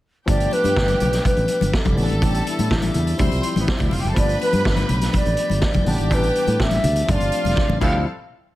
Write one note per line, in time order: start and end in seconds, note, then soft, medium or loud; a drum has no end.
0.26 0.45 G1 loud
0.26 1.93 F3 medium
0.26 1.94 A3 medium
0.26 1.95 B3 medium
0.26 1.95 D4 medium
0.26 1.70 G4 medium
0.26 7.77 G4 medium
0.26 3.16 D5 medium
0.26 0.54 D5 loud
0.26 1.96 F5 medium
0.26 1.70 G5 medium
0.26 1.96 B5 medium
0.26 kick loud
0.26 closed hi-hat medium
0.26 muted conga soft
0.40 closed hi-hat soft
0.51 1.25 B4 loud
0.51 closed hi-hat medium
0.51 muted conga soft
0.64 0.73 G2 medium
0.64 closed hi-hat soft
0.64 high conga medium
0.76 0.94 G1 medium
0.76 kick medium
0.76 snare loud
0.88 closed hi-hat medium
0.88 high conga medium
1.00 1.18 B1 medium
1.00 closed hi-hat medium
1.00 muted conga soft
1.00 low conga medium
1.13 snare soft
1.13 closed hi-hat soft
1.25 1.75 B4 medium
1.25 kick loud
1.25 closed hi-hat medium
1.25 high conga medium
1.37 1.46 A1 medium
1.37 closed hi-hat soft
1.48 closed hi-hat medium
1.48 muted conga soft
1.61 1.71 G1 medium
1.61 closed hi-hat medium
1.61 high conga medium
1.73 2.24 A4 medium
1.73 kick loud
1.73 snare loud
1.85 1.95 F1 medium
1.85 kick medium
1.85 closed hi-hat soft
1.85 high conga medium
1.95 2.07 A1 medium
1.95 3.15 E3 medium
1.95 3.16 G3 medium
1.95 3.17 B3 medium
1.95 2.04 C#4 medium
1.95 3.18 A5 medium
1.95 3.18 B5 medium
1.95 open hi-hat medium
1.95 low conga medium
1.99 2.94 A4 medium
1.99 2.94 A5 medium
2.04 3.20 D4 medium
2.09 2.19 G#1 medium
2.09 closed hi-hat soft
2.22 2.40 A1 loud
2.22 2.47 G4 medium
2.22 kick loud
2.22 closed hi-hat medium
2.22 muted conga soft
2.34 closed hi-hat soft
2.47 3.89 E4 medium
2.47 closed hi-hat medium
2.59 2.68 A2 loud
2.59 closed hi-hat soft
2.59 high conga medium
2.70 2.88 A1 loud
2.70 kick loud
2.70 snare loud
2.70 muted conga soft
2.82 closed hi-hat medium
2.82 high conga medium
2.94 3.13 E2 medium
2.94 closed hi-hat medium
2.94 low conga medium
3.07 closed hi-hat soft
3.18 3.28 D2 loud
3.18 4.13 F3 medium
3.18 4.14 G3 medium
3.18 4.15 C4 medium
3.18 4.15 E4 medium
3.18 3.54 C5 medium
3.18 4.16 E5 medium
3.18 5.84 G5 medium
3.18 3.54 C6 loud
3.18 4.16 C6 medium
3.18 kick loud
3.18 closed hi-hat medium
3.18 high conga medium
3.31 3.40 C2 loud
3.31 closed hi-hat soft
3.43 closed hi-hat medium
3.43 muted conga soft
3.56 3.65 A1 medium
3.56 closed hi-hat soft
3.56 high conga medium
3.60 3.68 B3 medium
3.60 3.68 B4 medium
3.67 3.76 C4 medium
3.67 3.76 C5 medium
3.67 kick loud
3.67 snare loud
3.67 muted conga soft
3.77 3.89 D2 medium
3.77 3.84 D4 medium
3.77 3.85 D5 medium
3.77 kick loud
3.77 closed hi-hat soft
3.77 high conga medium
3.86 3.93 E4 medium
3.86 3.93 E5 medium
3.91 4.01 F1 medium
3.91 4.00 F4 medium
3.91 4.00 F5 medium
3.91 open hi-hat medium
3.91 muted conga soft
3.91 low conga medium
4.00 4.09 G4 medium
4.00 4.09 G5 medium
4.00 closed hi-hat soft
4.05 4.13 F#1 medium
4.05 4.17 A4 medium
4.05 4.16 A5 medium
4.14 4.34 G1 medium
4.14 5.82 F3 medium
4.14 5.83 A3 medium
4.14 4.22 A#3 medium
4.14 5.84 D4 medium
4.14 5.59 B4 loud
4.14 5.85 D5 medium
4.14 5.60 B5 loud
4.14 5.85 B5 medium
4.14 kick loud
4.14 closed hi-hat medium
4.19 5.85 B3 medium
4.19 4.40 D5 loud
4.29 closed hi-hat soft
4.40 4.87 B4 loud
4.40 closed hi-hat medium
4.40 muted conga soft
4.53 4.62 G2 loud
4.53 closed hi-hat soft
4.53 high conga medium
4.65 4.83 G1 medium
4.65 kick loud
4.65 snare loud
4.77 closed hi-hat medium
4.77 high conga medium
4.89 5.07 B1 medium
4.89 closed hi-hat medium
4.89 muted conga soft
4.89 low conga medium
5.01 snare soft
5.01 closed hi-hat medium
5.13 5.60 D5 loud
5.13 kick loud
5.13 closed hi-hat medium
5.13 high conga medium
5.25 5.35 A1 medium
5.25 closed hi-hat soft
5.37 closed hi-hat medium
5.50 5.59 G1 medium
5.50 closed hi-hat soft
5.50 high conga medium
5.62 6.15 D5 medium
5.62 kick loud
5.62 snare loud
5.62 muted conga soft
5.73 5.83 F1 medium
5.73 kick loud
5.73 closed hi-hat soft
5.73 high conga medium
5.84 5.96 A1 medium
5.84 7.04 E3 medium
5.84 7.05 G3 medium
5.84 7.06 B3 medium
5.84 7.06 D4 medium
5.84 6.82 G4 medium
5.84 7.07 D5 medium
5.84 6.82 G5 loud
5.84 7.79 A5 medium
5.84 7.07 B5 medium
5.84 open hi-hat medium
5.84 low conga medium
5.98 6.11 G#1 medium
5.98 closed hi-hat soft
6.11 6.29 A1 loud
6.11 6.63 B4 loud
6.11 kick loud
6.11 closed hi-hat medium
6.11 muted conga soft
6.23 closed hi-hat soft
6.35 closed hi-hat medium
6.47 6.56 A2 loud
6.47 closed hi-hat soft
6.47 high conga medium
6.60 6.77 A1 medium
6.60 7.12 E5 loud
6.60 kick loud
6.60 snare loud
6.60 muted conga soft
6.71 closed hi-hat medium
6.71 high conga medium
6.84 7.01 D2 loud
6.84 closed hi-hat medium
6.84 muted conga soft
6.84 low conga medium
6.96 closed hi-hat medium
7.06 7.17 G1 loud
7.06 7.78 F3 medium
7.06 7.79 A3 medium
7.06 7.79 C4 medium
7.06 7.14 C#4 medium
7.06 7.80 F4 medium
7.06 7.80 F5 loud
7.06 7.81 F5 medium
7.06 7.81 C6 medium
7.06 kick loud
7.06 closed hi-hat medium
7.06 muted conga soft
7.06 high conga medium
7.11 7.83 D4 medium
7.11 7.81 D5 medium
7.20 7.29 G1 medium
7.20 closed hi-hat soft
7.32 closed hi-hat medium
7.45 7.53 F1 medium
7.45 closed hi-hat soft
7.45 high conga medium
7.57 kick loud
7.57 snare medium
7.57 muted conga soft
7.69 7.78 A1 loud
7.69 high conga medium
7.69 low conga medium
7.81 8.04 D2 loud
7.81 8.04 D3 medium
7.81 8.04 F3 medium
7.81 8.04 G3 medium
7.81 8.03 C4 medium
7.81 8.04 C4 medium
7.81 8.05 C4 medium
7.81 8.03 E4 medium
7.81 8.04 F4 medium
7.81 8.04 A4 medium
7.81 8.04 E5 medium
7.81 8.03 F5 medium
7.81 8.04 F5 medium
7.81 8.04 G5 medium
7.81 kick medium
7.81 crash medium
7.81 high conga medium